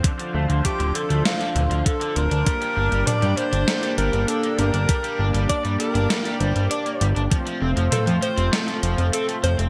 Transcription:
<<
  \new Staff \with { instrumentName = "Alto saxophone" } { \time 4/4 \key g \minor \tempo 4 = 99 r4 g'8 a'8 f'4 a'8 bes'8~ | bes'4 d''8 c''4 bes'8 a'8 bes'8~ | bes'8 r8 d''8 bes'4 c''8 d''8. r16 | r4 a'8 c''8 r4 a'8 c''8 | }
  \new Staff \with { instrumentName = "Analog synth pad" } { \time 4/4 \key g \minor << { <f f' c''>1 | <bes g' d''>1~ | <bes g' d''>1 | <a f' c''>1 | } \\ { d'1~ | d'1~ | d'1 | c'1 | } >> }
  \new Staff \with { instrumentName = "Overdriven electric guitar" } { \clef bass \time 4/4 \key g \minor d16 d16 a16 d16 a16 d16 d16 a16 d16 d16 d16 d16 d16 d16 d16 d'16 | g16 g16 d'16 g16 d'16 g16 g16 d'16 g16 g16 g16 g16 d'16 bes16 g16 d'16 | g16 g16 d'16 g16 d'16 g16 g16 d'16 g16 g16 g16 g16 d'16 bes16 g16 d'16 | f16 f16 c'16 f16 c'16 f16 f16 c'16 f16 f16 f16 f16 c'16 a16 f16 c'16 | }
  \new Staff \with { instrumentName = "Analog synth bass" } { \clef bass \time 4/4 \key g \minor r8 d,16 d,16 r16 d,,16 r16 d,16 r8 d,16 d,16 r8 d,,16 d,16 | r8 g,,16 g,,16 r16 g,16 r16 g,,16 r8 g,,16 g,,16 r8 g,,16 g,,16 | r8 g,,16 g,,16 r16 g,16 r16 g,,16 r8 g,,16 g,,16 r8 g,,16 g,,16 | r8 f,,16 f,,16 r16 f,16 r16 f,,16 r8 f,,16 f,,16 r8 f,,16 f,,16 | }
  \new DrumStaff \with { instrumentName = "Drums" } \drummode { \time 4/4 <hh bd>16 hh8 hh16 <hh bd>16 hh16 hh16 hh16 <hh sn>16 hh16 <hh toml>16 hh16 <hh bd>16 hh16 hh16 hh16 | <hh bd>16 hh8 hh16 <hh toml>16 hh16 hh16 hh16 <hh sn>16 hh16 hh16 hh16 hh16 hh16 hh16 hh16 | <hh bd>16 hh8 hh16 <hh bd>16 hh16 hh16 hh16 <hh sn>16 hh16 hh16 hh16 hh16 hh16 hh16 hh16 | <hh bd>16 hh8 hh16 <hh toml>16 hh16 hh16 hh16 <hh sn>16 hh16 hh16 hh16 hh16 hh16 hh16 hh16 | }
>>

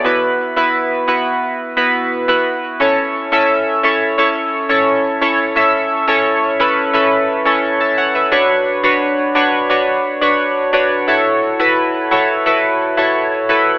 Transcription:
\new Staff \with { instrumentName = "Synth keys" } { \time 4/4 \key a \major \tempo 4 = 87 << { <a' d''>16 r2. r8. | r1 | r2. r16 <e'' a''>16 <cis'' fis''>16 <b' e''>16~ | <b' e''>16 r2. r8. |
r1 | } \\ { <b e' fis' b'>8. <b e' fis' b'>8. <b e' fis' b'>4 <b e' fis' b'>8. <b e' fis' b'>8. | <cis' e' a' cis''>8. <cis' e' a' e''>8. <cis' e' a' cis''>8 <cis' e' a' cis''>8. <cis' e' a' cis''>8. <cis' e' a' cis''>8 | <cis' e' a' e''>8. <cis' e' a' cis''>8. <cis' e' a' b'>8 <cis' e' a' b'>8. <cis' e' a' cis''>8. r8 | <d' fis' b' cis''>8. <d' fis' b' cis''>8. <d' fis' b' cis''>8 <d' fis' b' cis''>8. <d' fis' b' cis''>8. <d' fis' b' cis''>8 |
<e' fis' a' cis''>8. <e' fis' a' b'>8. <e' fis' a' cis''>8 <e' fis' a' b'>8. <e' fis' a' cis''>8. <e' fis' a' b'>8 | } >> }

